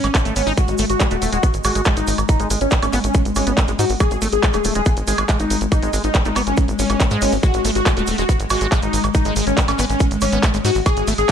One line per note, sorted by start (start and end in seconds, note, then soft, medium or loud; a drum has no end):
0.00 0.10 G#1 medium
0.00 0.56 G#3 medium
0.00 0.08 G#3 medium
0.00 0.16 C#4 loud
0.00 closed hi-hat medium
0.00 high woodblock soft
0.00 shaker soft
0.15 kick loud
0.15 clap loud
0.15 closed hi-hat medium
0.15 shaker soft
0.25 0.32 G#1 medium
0.25 0.35 A3 medium
0.25 closed hi-hat medium
0.25 shaker soft
0.36 0.42 G#1 loud
0.36 0.42 B3 medium
0.36 0.48 C#4 medium
0.36 open hi-hat loud
0.36 shaker medium
0.47 0.53 G#1 medium
0.47 0.53 D#4 loud
0.47 open hi-hat medium
0.47 shaker soft
0.57 11.32 G#3 medium
0.57 0.61 G#3 medium
0.57 0.75 F#4 loud
0.57 kick loud
0.57 closed hi-hat medium
0.57 shaker medium
0.68 0.74 G#1 medium
0.68 closed hi-hat medium
0.68 shaker soft
0.78 0.85 G#1 loud
0.78 0.85 A3 loud
0.78 open hi-hat loud
0.78 shaker medium
0.90 0.96 G#1 medium
0.90 1.01 F#4 medium
0.90 closed hi-hat medium
0.90 shaker soft
1.00 1.06 G#3 medium
1.00 kick loud
1.00 clap loud
1.00 closed hi-hat medium
1.00 high woodblock soft
1.00 shaker medium
1.11 1.17 D#1 medium
1.11 1.17 A3 medium
1.11 1.23 F#4 medium
1.11 closed hi-hat medium
1.11 shaker soft
1.22 1.28 D#1 loud
1.22 1.31 A3 medium
1.22 open hi-hat loud
1.22 shaker medium
1.32 1.39 D#1 medium
1.32 1.39 G#3 medium
1.32 1.50 F#4 loud
1.32 closed hi-hat medium
1.32 shaker soft
1.43 1.47 B3 medium
1.43 kick loud
1.43 closed hi-hat medium
1.43 shaker medium
1.54 1.60 G#1 medium
1.54 closed hi-hat medium
1.54 shaker soft
1.64 1.71 G#1 loud
1.64 1.74 G#3 medium
1.64 1.82 F#4 loud
1.64 open hi-hat loud
1.64 high woodblock medium
1.64 shaker loud
1.75 1.81 G#1 loud
1.75 1.81 G#3 medium
1.75 closed hi-hat medium
1.75 shaker soft
1.85 1.95 G#3 medium
1.85 kick loud
1.85 clap loud
1.85 closed hi-hat medium
1.85 shaker medium
1.97 2.03 G#1 medium
1.97 2.14 D#4 loud
1.97 closed hi-hat medium
1.97 shaker soft
2.07 2.14 G#1 loud
2.07 open hi-hat loud
2.07 shaker medium
2.18 2.24 G#1 medium
2.18 closed hi-hat medium
2.18 high woodblock soft
2.18 shaker soft
2.29 2.46 D#4 loud
2.29 kick loud
2.29 closed hi-hat medium
2.29 shaker medium
2.40 2.46 G#1 medium
2.40 2.49 G#3 medium
2.40 closed hi-hat medium
2.40 shaker soft
2.50 2.56 G#1 loud
2.50 2.60 G#3 medium
2.50 open hi-hat loud
2.50 shaker loud
2.61 2.67 G#1 medium
2.61 2.73 C#4 medium
2.61 closed hi-hat medium
2.61 shaker soft
2.71 kick loud
2.71 clap loud
2.71 closed hi-hat medium
2.71 shaker medium
2.83 2.89 G#1 medium
2.83 2.86 A3 medium
2.83 2.94 C#4 medium
2.83 closed hi-hat medium
2.83 high woodblock medium
2.83 shaker soft
2.93 2.99 G#1 loud
2.93 2.99 B3 loud
2.93 clap soft
2.93 open hi-hat loud
2.93 shaker medium
3.04 3.10 G#1 medium
3.04 3.21 C#4 loud
3.04 closed hi-hat medium
3.04 shaker soft
3.14 kick loud
3.14 closed hi-hat medium
3.14 shaker medium
3.25 3.31 G#1 medium
3.25 closed hi-hat medium
3.25 shaker soft
3.35 3.42 G#1 loud
3.35 3.45 G#3 medium
3.35 3.59 C#4 loud
3.35 open hi-hat loud
3.35 high woodblock soft
3.35 shaker loud
3.47 3.53 G#1 loud
3.47 3.53 B3 medium
3.47 closed hi-hat medium
3.47 shaker soft
3.57 3.64 A3 medium
3.57 kick loud
3.57 clap loud
3.57 closed hi-hat medium
3.57 shaker medium
3.68 3.74 G#1 medium
3.68 3.72 G#3 medium
3.68 closed hi-hat medium
3.68 shaker soft
3.79 3.85 G#2 loud
3.79 3.85 D#4 medium
3.79 3.90 F#4 medium
3.79 open hi-hat loud
3.79 shaker medium
3.89 3.96 G#1 loud
3.89 open hi-hat medium
3.89 shaker soft
4.00 4.04 G#3 medium
4.00 4.18 G#4 loud
4.00 kick loud
4.00 closed hi-hat medium
4.00 high woodblock medium
4.00 shaker medium
4.11 4.17 G#1 medium
4.11 closed hi-hat medium
4.11 shaker soft
4.22 4.28 G#1 loud
4.22 4.28 A3 loud
4.22 open hi-hat loud
4.22 shaker loud
4.32 4.39 G#1 medium
4.32 4.44 G#4 medium
4.32 closed hi-hat medium
4.32 shaker soft
4.43 4.49 G#3 medium
4.43 kick loud
4.43 clap loud
4.43 closed hi-hat medium
4.43 shaker medium
4.53 4.60 D#1 medium
4.53 4.60 A3 medium
4.53 4.65 G#4 medium
4.53 closed hi-hat medium
4.53 high woodblock soft
4.53 shaker soft
4.64 4.71 D#1 loud
4.64 4.74 A3 medium
4.64 open hi-hat loud
4.64 shaker medium
4.75 4.81 D#1 loud
4.75 4.81 G#3 medium
4.75 4.93 G#4 loud
4.75 closed hi-hat medium
4.75 shaker soft
4.85 4.90 B3 medium
4.85 kick loud
4.85 closed hi-hat medium
4.85 shaker medium
4.97 5.03 G#1 medium
4.97 closed hi-hat soft
4.97 shaker soft
5.07 5.14 G#1 loud
5.07 5.17 G#3 medium
5.07 5.25 G#4 medium
5.07 open hi-hat loud
5.07 shaker loud
5.18 5.24 G#1 loud
5.18 5.24 G#3 medium
5.18 closed hi-hat medium
5.18 high woodblock medium
5.18 shaker soft
5.29 5.38 G#3 medium
5.29 kick loud
5.29 clap loud
5.29 closed hi-hat medium
5.29 shaker medium
5.39 5.46 G#1 medium
5.39 5.57 D#4 loud
5.39 closed hi-hat medium
5.39 shaker soft
5.50 5.56 G#1 loud
5.50 open hi-hat loud
5.50 shaker medium
5.61 5.67 G#1 medium
5.61 closed hi-hat medium
5.61 shaker soft
5.72 5.89 D#4 loud
5.72 kick loud
5.72 closed hi-hat medium
5.72 high woodblock soft
5.72 shaker medium
5.83 5.89 G#1 medium
5.83 5.92 G#3 medium
5.83 closed hi-hat soft
5.83 shaker soft
5.93 5.99 G#1 loud
5.93 6.02 G#3 medium
5.93 open hi-hat loud
5.93 shaker loud
6.04 6.10 G#1 medium
6.04 6.15 D#4 medium
6.04 closed hi-hat medium
6.04 shaker soft
6.14 kick loud
6.14 clap loud
6.14 closed hi-hat medium
6.14 shaker medium
6.25 6.32 G#1 medium
6.25 6.29 A3 medium
6.25 6.37 D#4 medium
6.25 closed hi-hat soft
6.25 shaker soft
6.36 6.42 G#1 loud
6.36 6.42 B3 loud
6.36 clap soft
6.36 open hi-hat loud
6.36 high woodblock medium
6.36 shaker medium
6.47 6.53 G#1 medium
6.47 6.64 C#4 loud
6.47 closed hi-hat medium
6.47 shaker soft
6.57 kick loud
6.57 closed hi-hat medium
6.57 shaker medium
6.68 6.74 G#1 medium
6.68 closed hi-hat medium
6.68 shaker soft
6.79 6.85 G#1 loud
6.79 7.02 C#4 loud
6.79 open hi-hat loud
6.79 shaker loud
6.89 6.96 G#1 medium
6.89 closed hi-hat medium
6.89 high woodblock soft
6.89 shaker soft
7.00 7.06 A3 medium
7.00 kick loud
7.00 clap loud
7.00 closed hi-hat medium
7.00 shaker medium
7.11 7.17 G#2 medium
7.11 7.34 G#3 loud
7.11 closed hi-hat soft
7.11 shaker soft
7.21 7.28 G#1 loud
7.21 7.33 C#4 medium
7.21 open hi-hat loud
7.21 shaker medium
7.32 7.39 G#1 loud
7.32 7.36 D#4 medium
7.32 open hi-hat medium
7.32 shaker soft
7.43 7.47 G#3 medium
7.43 7.60 F#4 loud
7.43 kick loud
7.43 closed hi-hat medium
7.43 shaker soft
7.54 7.60 G#1 medium
7.54 closed hi-hat soft
7.54 shaker soft
7.65 7.71 G#1 loud
7.65 7.71 A3 loud
7.65 open hi-hat loud
7.65 shaker loud
7.75 7.82 G#1 medium
7.75 7.87 F#4 medium
7.75 closed hi-hat medium
7.75 shaker soft
7.86 7.92 G#3 medium
7.86 kick loud
7.86 clap loud
7.86 closed hi-hat medium
7.86 high woodblock soft
7.86 shaker medium
7.97 8.03 D#1 medium
7.97 8.03 A3 medium
7.97 8.08 F#4 medium
7.97 closed hi-hat medium
7.97 shaker soft
8.07 8.14 D#1 loud
8.07 8.17 A3 medium
8.07 open hi-hat loud
8.07 shaker medium
8.18 8.24 D#1 medium
8.18 8.24 G#3 medium
8.18 8.35 F#4 loud
8.18 closed hi-hat medium
8.18 shaker soft
8.29 8.33 B3 medium
8.29 kick loud
8.29 closed hi-hat medium
8.29 shaker medium
8.40 8.46 G#1 medium
8.40 closed hi-hat soft
8.40 shaker soft
8.50 8.57 G#1 loud
8.50 8.60 G#3 medium
8.50 8.68 F#4 loud
8.50 open hi-hat loud
8.50 high woodblock medium
8.50 shaker loud
8.61 8.67 G#1 loud
8.61 8.67 G#3 medium
8.61 closed hi-hat medium
8.61 shaker soft
8.72 8.81 G#3 medium
8.72 kick loud
8.72 clap loud
8.72 closed hi-hat medium
8.72 shaker soft
8.82 8.89 G#1 medium
8.82 9.00 D#4 loud
8.82 closed hi-hat medium
8.82 shaker soft
8.93 8.99 G#1 loud
8.93 open hi-hat loud
8.93 shaker loud
9.04 9.10 G#1 medium
9.04 closed hi-hat medium
9.04 high woodblock soft
9.04 shaker soft
9.14 9.32 D#4 medium
9.14 kick loud
9.14 closed hi-hat medium
9.14 shaker medium
9.25 9.31 G#1 medium
9.25 9.35 G#3 medium
9.25 closed hi-hat medium
9.25 shaker soft
9.36 9.42 G#1 loud
9.36 9.45 G#3 medium
9.36 open hi-hat loud
9.36 shaker medium
9.47 9.53 G#1 medium
9.47 9.58 C#4 medium
9.47 closed hi-hat medium
9.47 shaker soft
9.57 kick loud
9.57 clap loud
9.57 closed hi-hat medium
9.57 shaker soft
9.68 9.74 G#1 medium
9.68 9.72 A3 medium
9.68 9.80 C#4 medium
9.68 closed hi-hat medium
9.68 high woodblock medium
9.68 shaker soft
9.79 9.85 G#1 loud
9.79 9.85 B3 loud
9.79 clap soft
9.79 open hi-hat loud
9.79 shaker medium
9.90 9.96 G#1 medium
9.90 10.07 C#4 loud
9.90 closed hi-hat medium
9.90 shaker soft
10.00 kick loud
10.00 closed hi-hat medium
10.00 shaker medium
10.11 10.17 G#1 medium
10.11 closed hi-hat medium
10.11 shaker soft
10.21 10.28 G#1 loud
10.21 10.25 G#3 medium
10.21 10.45 C#4 medium
10.21 open hi-hat loud
10.21 high woodblock soft
10.21 shaker medium
10.32 10.39 G#1 medium
10.32 10.39 B3 medium
10.32 closed hi-hat medium
10.32 shaker soft
10.43 10.49 A3 medium
10.43 kick loud
10.43 clap loud
10.43 closed hi-hat medium
10.43 shaker medium
10.54 10.60 G#1 medium
10.54 10.58 G#3 medium
10.54 closed hi-hat medium
10.54 shaker soft
10.65 10.71 G#2 loud
10.65 10.71 D#4 medium
10.65 10.76 F#4 medium
10.65 open hi-hat loud
10.65 shaker medium
10.75 10.81 G#1 loud
10.75 open hi-hat medium
10.75 shaker soft
10.86 10.90 G#3 medium
10.86 11.03 G#4 loud
10.86 kick loud
10.86 closed hi-hat medium
10.86 high woodblock medium
10.86 shaker soft
10.97 11.03 G#1 medium
10.97 closed hi-hat medium
10.97 shaker soft
11.07 11.14 G#1 loud
11.07 11.14 A3 loud
11.07 open hi-hat loud
11.07 shaker medium
11.18 11.24 G#1 medium
11.18 11.30 G#4 medium
11.18 closed hi-hat medium
11.18 shaker soft